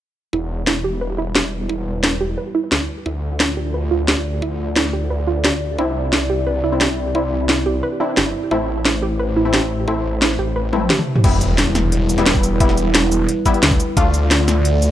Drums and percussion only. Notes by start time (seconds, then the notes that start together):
0.33 kick
0.67 snare
1.35 snare
1.44 kick
1.69 kick
2.04 snare
2.72 snare
2.80 kick
3.06 kick
3.40 snare
4.08 snare
4.17 kick
4.42 kick
4.76 snare
4.85 snare
5.44 snare
5.53 kick
5.79 kick
6.13 snare
6.81 snare
6.89 kick
7.15 kick
7.49 snare
8.17 snare
8.26 kick
8.51 kick
8.85 snare
9.54 snare
9.62 kick
9.88 kick
10.22 snare
10.30 snare
10.73 kick, high tom
10.90 snare, mid tom
10.98 mid tom
11.16 mid tom
11.24 kick, closed hi-hat, crash
11.41 closed hi-hat, shaker
11.58 snare, closed hi-hat
11.75 snare, closed hi-hat, shaker
11.92 closed hi-hat
12.09 closed hi-hat, shaker
12.18 snare, closed hi-hat
12.26 snare, closed hi-hat
12.35 kick, shaker
12.43 closed hi-hat, shaker
12.60 kick, closed hi-hat
12.69 snare
12.78 closed hi-hat, shaker
12.95 snare, closed hi-hat
13.12 closed hi-hat, shaker
13.29 closed hi-hat
13.46 kick, closed hi-hat, shaker
13.54 closed hi-hat
13.63 snare, closed hi-hat
13.71 kick, shaker
13.80 closed hi-hat, shaker
13.97 kick, closed hi-hat
14.14 closed hi-hat, shaker
14.31 snare, closed hi-hat
14.48 snare, closed hi-hat, shaker
14.65 closed hi-hat
14.82 closed hi-hat, shaker